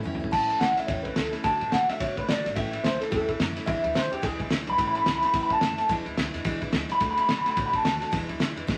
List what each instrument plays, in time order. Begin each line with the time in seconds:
0.03 upright bass F#2, steel-string acoustic guitar A2 E3 A3 C#4 E4, mid tom
0.15 mid tom
0.20 steel-string acoustic guitar A3 C#4 E4
0.24 floor tom
0.31 upright bass A1, steel-string acoustic guitar A2 E3 A3 C#4 E4, clean electric guitar A5, kick, crash
0.48 steel-string acoustic guitar A3 C#4 E4, ride
0.60 upright bass C#2, steel-string acoustic guitar E3 A3 C#4 E4, clean electric guitar F#5, snare, ride
0.76 steel-string acoustic guitar A3 C#4 E4, clean electric guitar E5, snare, ride
0.87 upright bass E2, steel-string acoustic guitar A2 E3 A3 C#4 E4, clean electric guitar C#5, kick, snare, ride
1.03 steel-string acoustic guitar C#4 E4, clean electric guitar B4, kick, ride
1.08 steel-string acoustic guitar A3
1.15 upright bass C#2, steel-string acoustic guitar E3 A3 C#4 E4, clean electric guitar A4, snare, ride
1.32 steel-string acoustic guitar A3 C#4 E4, snare, ride
1.43 upright bass D2, steel-string acoustic guitar D3 A3 D4 F#4, clean electric guitar A5, kick, snare, ride
1.60 upright bass B2, steel-string acoustic guitar A3 D4 F#4, ride
1.71 upright bass B2, steel-string acoustic guitar D3 A3 D4 F#4, clean electric guitar F#5, snare, ride
1.88 upright bass D3, steel-string acoustic guitar A3 D4 F#4, clean electric guitar E5, snare, ride
2.00 upright bass B2, steel-string acoustic guitar D3 A3 D4 F#4, clean electric guitar C#5, kick, snare, ride
2.17 upright bass B2, steel-string acoustic guitar A3 D4 F#4, clean electric guitar B4, kick, ride
2.27 upright bass B2, steel-string acoustic guitar D3 A3 D4 F#4, clean electric guitar D5, snare, ride
2.44 upright bass G#1, steel-string acoustic guitar A3 D4 F#4, snare, ride
2.55 upright bass A1, steel-string acoustic guitar A2 E3 A3 C#4 E4, clean electric guitar E5, kick, ride
2.72 steel-string acoustic guitar A3 C#4 E4, ride
2.82 upright bass C#2, steel-string acoustic guitar E3 A3 C#4 E4, clean electric guitar C5, snare, ride
3.00 steel-string acoustic guitar A3 C#4 E4, clean electric guitar A4, snare, ride
3.11 upright bass E2, steel-string acoustic guitar A2 E3 A3 C#4 E4, clean electric guitar A4, kick, snare, ride
3.28 steel-string acoustic guitar A3 C#4 E4, kick, ride
3.39 upright bass F#2, steel-string acoustic guitar E3 A3 C#4 E4, snare, ride
3.56 steel-string acoustic guitar A3 C#4 E4, snare, ride
3.66 upright bass E1, steel-string acoustic guitar E2 B2 E3 G#3 D4 E4, clean electric guitar E5, kick, ride
3.82 upright bass D2, steel-string acoustic guitar E3 G#3 D4 E4, ride
3.93 upright bass C#2, steel-string acoustic guitar E3 G#3 D4, clean electric guitar C5, snare, ride
4.10 upright bass E2, steel-string acoustic guitar E3 G#3 D4 E4, clean electric guitar G4, ride
4.22 upright bass D2, steel-string acoustic guitar E2 B2 E3 G#3 D4 E4, clean electric guitar G#4, kick, snare, ride
4.39 upright bass C#2, steel-string acoustic guitar E3 G#3 D4 E4, kick, ride
4.49 upright bass D2, steel-string acoustic guitar E3 G#3 D4 E4, snare, ride
4.65 upright bass B1, steel-string acoustic guitar E3 G#3 D4 E4, ride
4.70 clean electric guitar B5
4.77 upright bass A1, steel-string acoustic guitar A2 E3 A3 C#4 E4, kick, ride
4.88 clean electric guitar B5
4.93 steel-string acoustic guitar A3 C#4 E4, clean electric guitar B5, ride
5.04 upright bass C#2, steel-string acoustic guitar E3 A3 C#4 E4, snare, ride
5.15 clean electric guitar B5
5.20 steel-string acoustic guitar A3 C#4 E4, snare, ride
5.25 clean electric guitar B5
5.32 upright bass E2, steel-string acoustic guitar A2 E3 A3 C#4 E4, kick, snare, ride
5.43 clean electric guitar B5
5.50 steel-string acoustic guitar A3 C#4 E4, clean electric guitar A5, kick, ride
5.60 upright bass F#2, steel-string acoustic guitar E3 A3 C#4 E4, snare, ride
5.77 steel-string acoustic guitar A3 C#4 E4, snare, ride
5.88 upright bass E1, steel-string acoustic guitar E2 B2 E3 G#3 D4 E4, kick, snare, ride
6.05 upright bass D2, steel-string acoustic guitar E3 G#3 D4 E4, ride
6.16 upright bass C#2, steel-string acoustic guitar E3 G#3 D4 E4, snare, ride
6.33 upright bass E2, steel-string acoustic guitar E3 G#3 D4 E4, snare, ride
6.44 upright bass D2, steel-string acoustic guitar E2 B2 E3 G#3 D4 E4, kick, ride
6.61 upright bass C#2, steel-string acoustic guitar E3 G#3 D4 E4, kick, ride
6.71 upright bass D2, steel-string acoustic guitar E3 G#3 D4 E4, snare, ride
6.89 upright bass C#2, steel-string acoustic guitar E3 G#3 D4 E4, clean electric guitar B5, snare, ride
7.00 upright bass D2, steel-string acoustic guitar D3 A3 D4 F#4, kick, snare, ride
7.11 clean electric guitar B5
7.16 steel-string acoustic guitar A3 D4 F#4, ride
7.21 clean electric guitar B5
7.27 upright bass F#2, steel-string acoustic guitar D3 A3 D4, snare, ride
7.38 clean electric guitar B5
7.45 steel-string acoustic guitar A3 D4 F#4, clean electric guitar B5, snare, ride
7.56 upright bass A2, steel-string acoustic guitar D3 A3 D4 F#4, kick, snare, ride
7.66 clean electric guitar B5
7.72 steel-string acoustic guitar A3 D4 F#4, clean electric guitar A5, kick, ride
7.83 upright bass D#2, steel-string acoustic guitar D3 A3 F#4, snare, ride
8.00 steel-string acoustic guitar A3 D4 F#4, snare, ride
8.11 upright bass E1, steel-string acoustic guitar E2 B2 E3 G#3 D4 E4, kick, snare, ride
8.28 upright bass D2, steel-string acoustic guitar E3 G#3 D4 E4, ride
8.39 upright bass C#2, steel-string acoustic guitar E3 G#3 D4 E4, snare, ride
8.55 upright bass E2, steel-string acoustic guitar E3 G#3 D4 E4, ride
8.67 upright bass D2, steel-string acoustic guitar E2 B2 E3 G#3 D4 E4, kick, snare